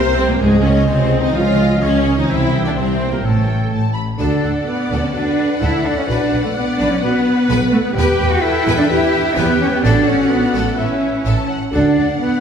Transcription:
Already playing: C2 C4 C5 E5 G5 C6
0.17 C3 A3 C4 C5 G5
0.28 A#2 G3 A#3 A#4
0.40 C#2 G#2 F3 G#3 G#4 C#5 D#5 G#5
0.61 C#3 A#3 C#4 C#5 D#5
0.65 C#5
0.86 C#2 C3 G#3 C4 C5 C#5
1.11 D#5
1.21 D#3 C4 D#4 D#5
1.32 C#2 F3 C#4 F4 C#5 D#5 F5 G#5
1.36 F5
1.58 D#5
1.79 C#2 C#3 G#3 C#5 D#5 G#5
1.83 C#4
2.05 C#5 D#5
2.17 D#3 C4 D#4 D#5
2.27 C2 E3 C4 C5 E5 G5
2.31 E4
2.52 G5
2.63 D3 A#3 D4 D5
2.75 C2 C3 G3 C4 C5 E5 G5
2.99 G5
3.10 A#2 G3 A#3 A#4
3.22 A1 A2 E3 A3 A4 C#5 G5 A5
3.47 G5
3.71 A1 A5
3.94 B5
4.17 D2 D4 F#4 A4 D5 F#5
4.43 D2 A4 F#5
4.66 B3 A4 B4 D5 F#5
4.90 D2 A4 F#5
5.03 C#4 C#5
5.13 D2 D4 F#4 A4 B4 D5 F#5
5.38 A4 F#5
5.61 D2 E4 A4 E5 F#5
5.85 D4 A4 D5 F#5
5.97 C#4 C#5
6.06 B1 D4 F#4 B4 D5 F#5
6.30 B1 B4 F#5
6.44 A3 A4
6.55 B3 B4 D5 F#5
6.79 B1 D4 B4 D5 F#5
6.90 C#4 C#5
7.01 B1 B3 F#4 B4 F#5
7.25 B4 F#5
7.48 B1 B3 B4 F#5
7.71 A3 A4 B4 F#5
7.84 B3 B4
7.95 E2 G4 B4 E5 G5
8.20 E2 B4
8.30 F#4 F#5
8.41 E4 A4 B4 E5 G5
8.67 E2 B4
8.76 D4 D5
8.87 E2 E4 G4 B4 E5 G5
9.35 E2 B3 G4 B4 G5
9.59 C#4 C#5
9.71 B3 B4
9.82 A1 D4 F#4 A4 D5 F#5
10.07 A1 C#4 A4 C#5
10.29 B3 F#4 B4
10.54 A1 A3 A4
10.66 A3 A4
10.77 A1 C#4 E4 A4 B4 C#5 E5
11.25 A1 A4 A5
11.50 F#5
11.71 D2 D4 F#4 A4 D5 F#5
11.97 D2 A4
12.20 B3 B4

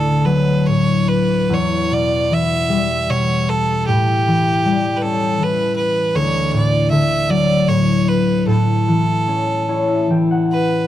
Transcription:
Already playing: D2 D3 B3 E4 A4
0.25 F#3 B4
0.66 A2 C#5
1.09 B4
1.49 E2
1.53 C#5
1.91 B2 D5
2.31 E3 E5
2.69 G3
3.09 B2 C#5
3.49 A4
3.87 A2 G4
4.28 E3
4.65 G3
4.97 B4
5.02 C#4 A4
5.40 E3 B4
5.76 B4
6.15 D2 C#5
6.51 A2 D5
6.90 D3 E5
7.30 F#3 D5
7.68 A2 C#5
8.08 B4
8.47 A2 A4
8.88 E3
9.28 C#4
9.68 E4 C#5
9.88 E5
10.10 E3 G5
10.31 F#5
10.52 B4

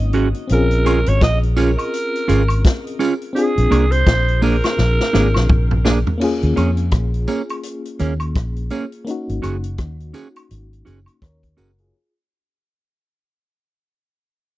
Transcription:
Already playing: G#1 A#3 C4 C#4 D#4 F#4 D#5
0.00 closed hi-hat
0.13 C#4 F#4 G#4, closed hi-hat
0.34 closed hi-hat
0.47 A#1 C4 C#4, closed hi-hat
0.52 F4 G#4 A#4
0.71 closed hi-hat
0.85 C#4 F4 G#4, closed hi-hat, tambourine, high woodblock
1.06 G#1 C#5, closed hi-hat
1.21 A#1 D#5, kick, snare, closed hi-hat
1.43 closed hi-hat
1.57 C#4 F4 G#4 A#4, closed hi-hat, tambourine
1.78 closed hi-hat, high woodblock
1.94 closed hi-hat
2.15 closed hi-hat
2.28 G#1 C#4 F4 G#4, closed hi-hat, tambourine
2.48 closed hi-hat, high woodblock
2.65 kick, snare, closed hi-hat
2.87 closed hi-hat
2.99 C#4 F4 G#4, closed hi-hat, tambourine
3.22 closed hi-hat
3.33 C4 D4 F4 G#4, closed hi-hat
3.39 G#4
3.58 A#1, closed hi-hat
3.71 C2 A#3 D4 G#4, closed hi-hat, tambourine, high woodblock
3.91 C5, closed hi-hat
4.06 A#1, kick, snare, closed hi-hat
4.28 closed hi-hat
4.42 A#3 D4 G#4 A#4, open hi-hat, tambourine
4.64 snare, closed hi-hat, high woodblock
4.78 A#1, snare
5.00 snare
5.13 G#1 A#3 C4 D4 F4 G#4, snare, tambourine
5.34 A#1, snare, high woodblock
5.49 A#1, kick, mid tom
5.71 mid tom
5.85 A#3 D4 G#4, snare, tambourine
6.07 floor tom
6.18 A#3 C#4, crash
6.22 F4 G#4
6.42 D#2, closed hi-hat
6.56 F2 A#3 C#4 G#4, closed hi-hat, tambourine, high woodblock
6.77 closed hi-hat
6.91 A#1, kick, cross-stick, closed hi-hat
7.14 closed hi-hat
7.28 A#3 C#4 G#4, closed hi-hat, tambourine
7.49 closed hi-hat, high woodblock
7.63 closed hi-hat
7.85 closed hi-hat
7.99 D#2 A#3 C#4 G#4, closed hi-hat, tambourine
8.20 closed hi-hat, high woodblock
8.35 A#1, kick, cross-stick, closed hi-hat
8.56 closed hi-hat
8.70 A#3 C#4 G#4, closed hi-hat, tambourine
8.92 closed hi-hat
9.05 A#3 C#4 D#4, closed hi-hat
9.11 F#4
9.29 G#1, closed hi-hat
9.42 F#1 C#4 F#4 G#4, closed hi-hat, tambourine, high woodblock
9.64 closed hi-hat
9.78 D#2, kick, cross-stick, closed hi-hat
10.00 closed hi-hat
10.14 C#4 F#4 G#4, closed hi-hat, tambourine
10.36 closed hi-hat, high woodblock
10.51 G#1, closed hi-hat
10.73 closed hi-hat
10.85 F#1 C#4 F#4 G#4, closed hi-hat, tambourine
11.06 closed hi-hat, high woodblock
11.22 D#2 A#4 C#5, kick, cross-stick, closed hi-hat
11.43 kick, closed hi-hat
11.57 F#1 C#4 F#4 G#4 A#4, closed hi-hat, tambourine
11.78 F4 G#4, closed hi-hat

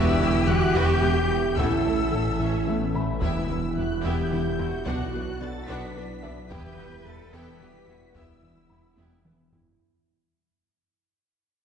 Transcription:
Already playing: E1 D3 B3 E4 F#4 G4 B4 E5 A5 E6
0.20 E1 E3 B3 F#4 G4 B4
0.47 E1 E2 G3 B3 F#4 G4 F#6
0.74 E1 E2 E3 B3 F#4 G4 B4 E5 G6
1.02 E1 E3 B3 F#4 G4 B4
1.29 E1 E2 B3 E4 F#4 G4
1.57 A1 A2 E3 A3 C#4 E4 A4 E5 F#5 E6, taiko
1.85 A1 A3 C#4 E4 C#5
2.12 A1 A2 C#4 E4 A4
2.39 A1 A2 A3 C#4 A4 E5
2.66 A1 A3 B3 E4 C#5
2.94 A1 A2 A3 C#4 A4 B4 B5
3.21 E1 E2 E3 B3 E4 G4 E5 E6, taiko
3.50 E2 E3 B3 E4 F#4 B4
3.77 E2 G3 B3 E4 F#4 G4 F#6
4.04 E2 E3 B3 E4 G4 E5 G6
4.31 E2 E3 B3 E4 F#4 B4
4.58 E2 B3 E4 F#4 G4, taiko rim
4.85 B1 B2 F#3 B3 D4 F#4 D5 F#5 F#6, taiko
5.13 B1 B3 D4 F#4 D5
5.41 B1 B2 B3 D4 A4 B4 A6
5.68 B1 B2 B3 D4 F#4 B4 F#5 B6
5.96 B1 B3 D4 F#4 D5
6.22 B1 B2 B3 D4 B4 E5
6.50 E1 E2 E3 G3 B3 E4 G4 B4 E5 G5 G6, taiko
6.77 E2 E3 B3 E4 F#4 F#5
7.05 E2 G3 B3 E4 A4 E5 A6
7.33 E2 E3 B3 E4 G4 A4 B4 G5 B6, taiko rim
7.60 E2 E3 B3 E4 F#4 G4 F#5
7.87 E2 B3 E4 F#4 E5
8.14 E2 E3 B3 E4 G4 E5 E6, taiko
8.42 E2 E3 B3 E4 B4
8.69 E2 G3 B3 E4 G4 B5
8.97 E2 E3 B3 E4 G4 E5, taiko high
9.25 E2 E3 B3 E4 B4, taiko mid
9.51 E2 B3 E4 G4, taiko low

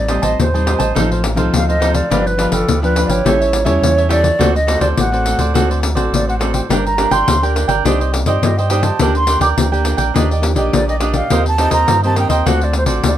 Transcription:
Already playing: A1 A2 D5
0.08 G3 C4 D#4 G4 C5 D#5 A5, pandeiro
0.22 A1 C5 D#5 A5, pandeiro
0.39 D#2 A2 C5, pandeiro
0.54 G3 C4 D#4 C5 D#5 A5, pandeiro
0.67 G4 C5 D#5 A5, pandeiro
0.79 A1 C5 D#5 A5, pandeiro
0.95 A1 A2 F3 C4 D#4 A4 C5 F5, pandeiro
1.12 A4 C5, pandeiro
1.24 muted cavaquinho stroke, pandeiro
1.35 C2 F3 C4 D#4 A4 C5 F5, pandeiro
1.52 D2 A2 F5, pandeiro
1.69 A4 C5 D#5 F5, pandeiro
1.80 F3 C4 D#4 A4 C5 F5, pandeiro
1.94 A4 C5 D5 F5, pandeiro
2.10 G1 G2 F3 B3 D4 G4 B4 F5, pandeiro
2.27 B4, muted cavaquinho stroke, pandeiro
2.38 F3 B3 D4 G4 B4 F5, pandeiro
2.52 G1 G4 A4 B4 F5, pandeiro
2.67 D2 D3, pandeiro
2.82 F3 B3 D4 G4 B4 F5, pandeiro
2.96 D4 G4 B4 F5, pandeiro
3.05 G#1 D5 F5
3.10 G4 B4 C#5, pandeiro
3.24 A1 A2 G3 C#4 E4 G4 A4 C#5 E5, pandeiro
3.40 A4 C#5 E5, pandeiro
3.53 muted cavaquinho stroke, pandeiro
3.65 E2 G3 C#4 E4 A4 C#5 E5, pandeiro
3.81 E2 E3, pandeiro
3.97 A4 C#5 E5, pandeiro
4.09 G3 C#4 E4 G4 A4 C#5 D5 E5, pandeiro
4.22 A4 C#5 E5, pandeiro
4.39 D2 D3 A3 C4 F#4 A4 C5 D5, pandeiro
4.55 D#5, muted cavaquinho stroke, pandeiro
4.67 A3 C4 F#4 A4 C5 D5, pandeiro
4.80 D2 A4 C5 D5, pandeiro
4.97 A1 A2 F#5, pandeiro
5.12 A3 C4 F#4 A4 C5 D5, pandeiro
5.25 F#4 A4 C5 D5, pandeiro
5.38 D2 A4 C5 D5, pandeiro
5.54 D3 A3 C4 F#4 A4 C5 D5, pandeiro
5.70 A4 C5 D5, pandeiro
5.81 muted cavaquinho stroke, pandeiro
5.95 A1 A3 C4 F#4 A4 C5 D5, pandeiro
6.12 A1 A2 D5, pandeiro
6.27 A4 C5 D5 F#5, pandeiro
6.39 A3 C4 F#4 A4 C5 D5, pandeiro
6.53 A4 C5 D5 G5, pandeiro
6.69 G1 G3 D4 G4 A#4 D5 G5, pandeiro
6.86 A#5, muted cavaquinho stroke, pandeiro
6.98 D4 G4 A#4 D5 G5, pandeiro
7.11 G1 A#4 D5 G5 C6, pandeiro
7.27 D2 D3, pandeiro
7.42 D4 G4 A#4 D5 G5, pandeiro
7.55 D4 A#4 D5 G5, pandeiro
7.68 G1 A#4 D5 G5, pandeiro
7.84 C2 C4 D4 D#4 G4 C5 D5 D#5, pandeiro
8.00 G4 C5 D#5, pandeiro
8.13 muted cavaquinho stroke, pandeiro
8.24 G2 D#4 G4 C5 D5 D#5, pandeiro
8.29 G4
8.42 G2 G3 D#5, pandeiro
8.58 G4 C5 D#5 G5, pandeiro
8.70 D4 D#4 G4 C5 D5 D#5, pandeiro
8.83 G4 C5 D#5 A5, pandeiro
8.99 D2 D3 A#3 D4 G4 A#4 D5 G5, pandeiro
9.15 C6, muted cavaquinho stroke, pandeiro
9.27 A#3 D4 G4 A#4 D5 G5, pandeiro
9.40 D2 A#4 D5 G5 D6, pandeiro
9.56 D2 D3 A#3 D4 G4, pandeiro
9.72 A#3 D4 G4 A#4 D5 G5, pandeiro
9.84 D4 A#4 D5 G5, pandeiro
9.97 A#1 A#4 D5 G5, pandeiro
10.14 D#2 D#3 A#3 D4 G4 D5 D#5, pandeiro
10.31 G4 D5 D#5, pandeiro
10.42 A#3 D4 G4, muted cavaquinho stroke, pandeiro
10.55 A#1 A#3 D4 G4 D5 D#5, pandeiro
10.73 A#1 A#2 D5, pandeiro
10.88 G4 D5 D#5, pandeiro
11.00 A#3 D4 G4 D5 D#5, pandeiro
11.13 G4 D5 D#5 F5, pandeiro
11.30 D#2 D#3 A#3 C4 D#4 G4 A#4 C5 D#5, pandeiro
11.46 A5, muted cavaquinho stroke, pandeiro
11.58 A#3 C4 D#4 G4 A#4 C5 D#5, pandeiro
11.70 D#2 A#4 C5 D#5 A#5, pandeiro
11.88 G2 D#3, pandeiro
12.03 A#3 C4 G4 A#4 C5 D#5 A5, pandeiro
12.15 D#4 A#4 C5 D#5, pandeiro
12.19 G5
12.29 D#2 A#4 C5 D#5 G5, pandeiro
12.46 D2 D3 A3 C4 F#4 A4 C5 D5 F#5, pandeiro
12.61 A4 C5 D5, pandeiro
12.73 muted cavaquinho stroke, pandeiro
12.78 C5
12.86 A1 A3 C4 F#4 A4 C5 D5, pandeiro
13.04 D2 A2, pandeiro
13.08 D5

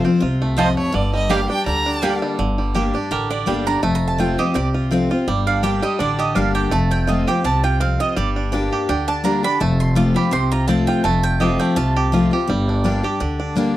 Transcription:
Already playing: F2 F4 C5
0.04 C4 F4
0.20 C2 C3 F4
0.42 A3
0.57 F2 F3 C4 F4 C5 D#5 A5
0.77 A3 C#5
0.92 G1 G2 D3 D5
1.14 G3 D#5
1.29 G3 A#3 D4 G4 D5 F5 G5
1.49 D4 G4 G5
1.66 D2 D3 G3 A#5
1.86 D4
2.02 G3 A#3 D4 G4 D5 G5
2.22 G3
2.39 G1 G2 D3
2.58 G3
2.75 G3 A#3 D4 G4
2.94 D4 G4
3.11 A1 D3 G4 A#4
3.30 D4 D5
3.46 G1 G3 A#3 D4 G4 G5
3.66 D4 G4 A#5
3.83 F1 F2 A3 A5
3.95 A#5
4.08 A5
4.18 F3 A3 C4 F4 G5
4.38 C4 F4 G4 D#5
4.54 C2 C3 C4 D5
4.74 F4
4.91 F3 A3 C4 F4
5.10 C4 F4
5.27 G1 G2 G3 D5
5.47 D4 F5
5.63 G3 A#3 D4 G4 G5
5.82 G3 D4 G4 D#5
5.99 A1 D3 D4 D5
6.19 G4 D#5
6.35 G1 G3 A#3 D4 G4 F5
6.55 G4 G5
6.71 F1 F2 A3 A5
6.91 C4 G5
7.07 F3 A3 C4 F4 D#5
7.27 C4 F4 G4 G5
7.44 C2 C3 C4 A5
7.64 F4 G5
7.80 F2 C4 F5
8.00 F4 D#5
8.16 G1 G2 G3 D5
8.36 D4
8.52 G3 A#3 D4 G4
8.73 G4
8.89 D2 D3 D4 G5
9.08 D4 A5
9.24 G3 A#3 D4 G4 A#5
9.43 D4 G4 B5
9.60 F1 F2 A3 A5
9.80 C6
9.95 F3 A3 C4 F4 D6
10.14 C4 F4 G4 B5
10.31 C2 C3 C4 C6
10.52 F4 A#5
10.68 F3 A3 C4 F4 A5
10.87 F4 G5
11.04 F1 F2 A3 A5
11.23 G5
11.40 F3 A3 C4 F4 G4 D#5
11.60 A3 G5
11.76 C2 C3 F4 A5
11.97 G4
12.12 F3 A3 C4 F4
12.31 C4 F4 G4
12.48 G1 G2 G3
12.69 D4
12.84 G3 A#3 D4 G4
13.03 D4 G4
13.20 D2 D3 D4
13.40 D4
13.56 G3 A#3 D4 G4

